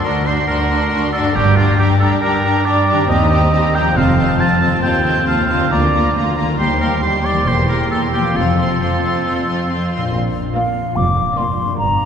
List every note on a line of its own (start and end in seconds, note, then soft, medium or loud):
0.00 1.29 D3 soft
0.00 1.22 D4 soft
0.00 1.33 F#4 soft
0.00 1.33 A4 soft
0.00 1.36 C5 soft
0.00 0.24 C6 soft
0.05 0.44 D2 soft
0.05 0.25 D4 soft
0.05 0.27 F#4 soft
0.05 0.28 A#4 medium
0.25 0.48 D4 soft
0.25 0.48 F#4 soft
0.25 0.47 C5 medium
0.25 0.46 C6 soft
0.47 0.87 D2 soft
0.47 0.70 D4 soft
0.47 0.70 F#4 soft
0.47 1.12 A#4 medium
0.47 0.69 C6 soft
0.70 0.92 D4 soft
0.70 0.90 F#4 soft
0.70 0.89 C6 soft
0.91 1.31 D2 soft
0.91 1.13 D4 soft
0.91 1.12 F#4 soft
0.91 1.13 C6 soft
1.13 1.35 D4 soft
1.13 1.35 F#4 soft
1.13 1.37 A4 medium
1.13 1.36 C6 soft
1.19 3.03 G2 soft
1.23 3.05 D4 soft
1.28 3.00 G4 soft
1.32 1.57 D4 soft
1.32 1.57 G4 medium
1.32 3.05 A#4 soft
1.32 1.56 A#5 soft
1.36 1.73 G1 soft
1.36 1.75 G2 medium
1.36 1.57 G4 soft
1.56 1.78 D4 soft
1.56 1.79 F4 medium
1.56 1.79 G4 soft
1.56 1.78 A#5 soft
1.79 2.19 G2 soft
1.79 2.00 D4 soft
1.79 1.89 G4 medium
1.79 2.01 G4 soft
1.79 1.99 A#5 soft
2.00 2.21 D4 soft
2.00 2.23 G4 soft
2.00 2.10 A4 medium
2.00 2.21 A#5 soft
2.22 2.62 G2 soft
2.22 2.44 D4 soft
2.22 2.43 G4 soft
2.22 2.67 A#4 medium
2.22 2.44 A#5 soft
2.44 2.64 D4 soft
2.44 2.65 G4 soft
2.44 2.65 A#5 soft
2.65 3.05 G2 soft
2.65 2.86 D4 soft
2.65 2.87 G4 soft
2.65 3.08 D5 medium
2.65 2.87 A#5 soft
2.88 3.09 D4 soft
2.88 3.08 G4 soft
2.88 3.08 A#5 soft
2.93 3.90 D#3 soft
2.97 3.83 C4 soft
3.01 3.94 G4 soft
3.06 3.46 D#2 medium
3.06 3.30 C4 soft
3.06 3.29 G4 soft
3.06 3.97 A#4 soft
3.06 3.76 D#5 medium
3.06 3.31 A#5 soft
3.10 3.48 D#2 medium
3.30 3.52 C4 soft
3.30 3.50 G4 soft
3.30 3.52 A#5 soft
3.52 3.92 D#2 soft
3.52 3.74 C4 soft
3.52 3.72 G4 soft
3.52 3.75 A#5 soft
3.73 3.95 C4 soft
3.73 3.95 G4 soft
3.73 3.98 G5 medium
3.73 3.97 A#5 soft
3.79 6.52 F3 soft
3.84 4.69 C4 soft
3.88 4.73 F4 soft
3.93 4.33 F1 soft
3.93 4.17 C4 soft
3.93 4.16 F4 soft
3.93 4.78 A4 soft
3.97 4.35 F2 medium
3.97 4.41 F5 medium
3.97 4.17 A5 soft
4.17 4.38 C4 soft
4.17 4.38 F4 soft
4.17 4.38 A5 soft
4.39 4.78 F2 soft
4.39 4.60 C4 soft
4.39 4.61 F4 soft
4.39 4.59 A5 soft
4.39 4.82 A5 medium
4.60 4.82 C4 soft
4.60 4.82 F4 soft
4.60 4.81 A5 soft
4.65 5.64 D#3 soft
4.70 5.66 C4 soft
4.74 5.61 F4 soft
4.79 5.20 D#2 soft
4.79 5.04 F4 soft
4.79 5.71 A4 soft
4.79 5.26 G5 medium
4.79 5.04 A5 soft
4.83 5.22 D#2 medium
4.83 5.03 C4 soft
5.05 5.26 C4 soft
5.05 5.26 F4 soft
5.05 5.25 A5 soft
5.27 5.67 D#2 soft
5.27 5.47 C4 soft
5.27 5.49 F4 soft
5.27 5.70 F5 medium
5.27 5.47 A5 soft
5.48 5.70 C4 soft
5.48 5.71 F4 soft
5.48 5.70 A5 soft
5.53 6.52 D3 soft
5.58 6.54 A#3 soft
5.62 6.56 F4 soft
5.67 5.92 A#3 soft
5.67 6.58 A#4 soft
5.71 6.08 D2 soft
5.71 6.10 D2 soft
5.71 5.93 F4 soft
5.71 6.14 D5 medium
5.71 5.91 A#5 soft
5.93 6.14 A#3 soft
5.93 6.15 F4 soft
5.93 6.14 A#5 soft
6.15 6.54 D2 soft
6.15 6.36 A#3 soft
6.15 6.37 F4 soft
6.15 6.37 A#5 soft
6.37 6.58 A#3 soft
6.37 6.59 F4 soft
6.37 6.59 A#5 soft
6.42 7.39 D#3 soft
6.46 8.31 G3 soft
6.50 7.37 G4 soft
6.55 6.95 D#2 soft
6.55 6.79 G3 soft
6.55 7.42 C5 soft
6.55 6.79 C5 medium
6.59 6.98 D#2 medium
6.59 6.80 G4 soft
6.59 6.79 C6 soft
6.80 7.01 G3 soft
6.80 7.01 G4 soft
6.80 7.02 A#4 medium
6.80 7.02 C6 soft
7.02 7.42 D#2 soft
7.02 7.23 G3 soft
7.02 7.23 G4 soft
7.02 7.26 C5 medium
7.02 7.24 C6 soft
7.24 7.46 G3 soft
7.24 7.45 G4 soft
7.24 7.49 D5 medium
7.24 7.45 C6 soft
7.30 8.29 E3 soft
7.34 8.31 A#3 soft
7.38 8.33 G4 soft
7.43 7.83 E1 soft
7.43 7.68 A#3 soft
7.43 7.67 G4 soft
7.43 8.31 C5 soft
7.43 7.67 C6 soft
7.47 7.86 E2 soft
7.47 7.68 C5 medium
7.68 7.90 A#3 soft
7.68 7.90 G4 soft
7.68 7.90 A#4 soft
7.68 7.89 C6 soft
7.91 8.31 E2 soft
7.91 8.12 A#3 soft
7.91 8.12 G4 soft
7.91 8.01 A4 medium
7.91 8.12 C6 soft
8.12 8.35 A#3 soft
8.12 8.37 G4 soft
8.12 8.35 G4 soft
8.12 8.34 C6 soft
8.18 11.72 F3 soft
8.23 10.10 C4 soft
8.27 10.04 F4 soft
8.32 8.75 F2 soft
8.32 8.57 F4 soft
8.32 10.15 C5 soft
8.32 8.58 C6 soft
8.36 8.74 F1 soft
8.36 8.57 C4 soft
8.36 9.94 A4 medium
8.58 8.79 C4 soft
8.58 8.79 F4 soft
8.58 8.80 C6 soft
8.80 9.21 F2 soft
8.80 9.02 C4 soft
8.80 9.02 F4 soft
8.80 9.03 C6 soft
9.03 9.24 C4 soft
9.03 9.26 F4 soft
9.03 9.24 C6 soft
9.25 9.66 F2 soft
9.25 9.47 C4 soft
9.25 9.48 F4 soft
9.25 9.46 C6 soft
9.48 9.68 C4 soft
9.48 9.70 F4 soft
9.48 9.69 C6 soft
9.70 10.10 F2 soft
9.70 9.92 C4 soft
9.70 9.91 F4 soft
9.70 9.92 C6 soft
9.93 11.71 A#2 soft
9.93 10.15 C4 soft
9.93 10.14 F4 soft
9.93 10.15 C6 soft
10.01 11.64 D4 soft
10.06 11.76 F4 soft
10.10 11.73 A#4 soft
10.14 10.48 A#1 soft
10.14 10.48 A#2 soft
10.55 10.87 A#3 soft
10.55 10.87 F4 soft
10.55 10.86 D5 soft
10.55 10.98 F5 soft
10.96 11.30 F1 soft
10.96 11.30 F2 soft
10.96 11.39 D6 medium
11.37 11.69 A#3 soft
11.37 11.69 F4 soft
11.37 11.68 D5 soft
11.37 11.77 C6 soft
11.60 12.05 G2 soft
11.65 12.05 D4 soft
11.70 12.05 G4 soft
11.74 12.05 A#4 soft
11.74 12.05 A#5 medium
11.79 12.05 G1 soft
11.79 12.05 G2 soft